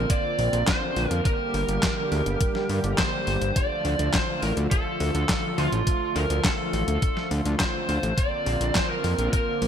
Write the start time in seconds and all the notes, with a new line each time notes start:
Already playing: D3 A#3 C4 F4 A#4
0.10 D5, kick, closed hi-hat
0.39 A#1, open hi-hat
0.53 A#1, closed hi-hat
0.67 C5, kick, snare, clap, closed hi-hat
0.96 A#1, open hi-hat
1.09 F2 A#4, closed hi-hat
1.25 G3 G4 A#4, kick, closed hi-hat
1.54 G1, open hi-hat
1.68 G1, closed hi-hat
1.83 kick, snare, clap, closed hi-hat
2.12 D2, open hi-hat
2.26 G1, closed hi-hat
2.41 kick, closed hi-hat
2.55 snare
2.69 G2, open hi-hat
2.84 G1, closed hi-hat
2.98 C5, kick, snare, clap, closed hi-hat
3.27 G1, open hi-hat
3.42 G1, closed hi-hat
3.56 F3 A3 F4 D5, kick, closed hi-hat
3.85 D2, open hi-hat
3.99 D2, closed hi-hat
4.14 C5, kick, snare, clap, closed hi-hat
4.43 A1 A#4, open hi-hat
4.57 D2, closed hi-hat
4.71 A4, kick, closed hi-hat
5.00 D2, open hi-hat
5.15 D2, closed hi-hat
5.29 kick, snare, clap, closed hi-hat
5.58 D2 F4, open hi-hat
5.72 A1, closed hi-hat
5.87 kick, closed hi-hat
6.16 D2 A#4, open hi-hat
6.30 D2, closed hi-hat
6.44 A4, kick, snare, clap, closed hi-hat
6.73 A1, open hi-hat
6.88 D2, closed hi-hat
7.02 kick, closed hi-hat
7.17 snare
7.31 D2, open hi-hat
7.45 D2, closed hi-hat
7.60 C5, kick, snare, clap, closed hi-hat
7.89 D2, open hi-hat
8.03 A1, closed hi-hat
8.18 D3 A#3 C4 D5, kick, closed hi-hat
8.46 A#1, open hi-hat
8.61 A#1, closed hi-hat
8.75 C5, kick, snare, clap, closed hi-hat
8.90 A#4
9.04 F2, open hi-hat
9.19 A#1, closed hi-hat
9.33 A#4, kick, closed hi-hat
9.62 A#1, open hi-hat